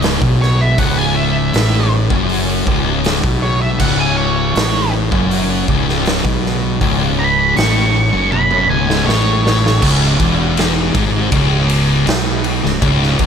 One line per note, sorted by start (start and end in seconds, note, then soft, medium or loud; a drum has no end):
0.00 0.18 C#1 loud
0.00 0.20 C#2 loud
0.00 open hi-hat medium
0.04 snare loud
0.21 0.75 B1 loud
0.21 0.77 B2 loud
0.21 kick loud
0.42 0.61 C#5 loud
0.42 snare soft
0.61 0.79 E5 medium
0.78 1.50 C#1 loud
0.78 1.53 C#2 loud
0.78 0.98 F#5 medium
0.78 kick loud
0.78 open hi-hat medium
0.98 1.16 G#5 medium
1.16 1.89 E5 loud
1.54 2.06 A1 medium
1.54 2.09 A2 loud
1.54 snare loud
1.54 open hi-hat medium
2.10 2.63 F#1 medium
2.10 2.66 F#2 loud
2.10 kick loud
2.29 open hi-hat medium
2.67 3.20 C#1 loud
2.67 3.22 C#2 loud
2.67 kick loud
3.04 snare loud
3.04 open hi-hat medium
3.23 3.76 B1 loud
3.23 3.78 B2 loud
3.23 kick loud
3.43 3.61 C#5 loud
3.62 3.80 E5 medium
3.79 4.52 C#1 loud
3.79 4.54 C#2 loud
3.79 3.99 F#5 medium
3.79 kick loud
3.79 crash loud
3.99 4.17 G#5 loud
4.17 4.91 C#5 loud
4.55 5.08 A1 loud
4.55 5.11 A2 loud
4.55 snare loud
4.55 open hi-hat medium
5.11 5.64 F#1 loud
5.11 5.67 F#2 loud
5.11 kick loud
5.31 open hi-hat medium
5.68 6.21 C#1 loud
5.68 6.23 C#2 loud
5.68 kick loud
5.89 snare soft
6.05 snare loud
6.05 open hi-hat medium
6.24 6.78 B1 loud
6.24 6.80 B2 loud
6.24 kick loud
6.46 snare soft
6.81 7.53 C#1 loud
6.81 7.55 C#2 loud
6.81 kick loud
6.81 open hi-hat medium
7.19 7.56 B5 loud
7.56 8.10 A1 medium
7.56 8.12 A2 loud
7.56 8.30 C#6 medium
7.56 snare loud
7.56 open hi-hat medium
8.12 8.66 F#1 medium
8.12 8.68 F#2 loud
8.32 8.68 B5 loud
8.32 high tom medium
8.51 high tom medium
8.69 9.05 C#1 loud
8.69 9.06 C#2 loud
8.69 9.06 G#5 medium
8.90 snare medium
9.07 9.78 A1 loud
9.07 9.81 A2 loud
9.07 9.80 C#5 medium
9.07 snare medium
9.47 snare medium
9.66 snare loud
9.82 10.17 C#1 medium
9.82 10.18 C#2 loud
9.82 kick loud
9.82 crash loud
10.03 snare soft
10.20 10.91 E1 medium
10.20 10.94 E2 loud
10.20 kick loud
10.20 ride medium
10.57 snare loud
10.57 ride loud
10.94 11.30 G#1 medium
10.94 11.31 G#2 loud
10.94 kick loud
10.94 ride medium
11.32 12.03 C#1 medium
11.32 12.06 C#2 loud
11.32 kick loud
11.32 ride loud
11.69 ride medium
12.07 12.60 B1 loud
12.07 12.62 B2 loud
12.07 snare loud
12.07 ride medium
12.44 ride medium
12.64 12.81 C#1 medium
12.64 12.80 C#2 medium
12.64 snare soft
12.81 13.17 C#1 loud
12.81 13.18 C#2 loud
12.81 kick loud
12.81 ride medium
13.03 snare soft
13.19 13.26 E1 loud
13.19 13.26 E2 loud
13.19 kick loud
13.19 ride medium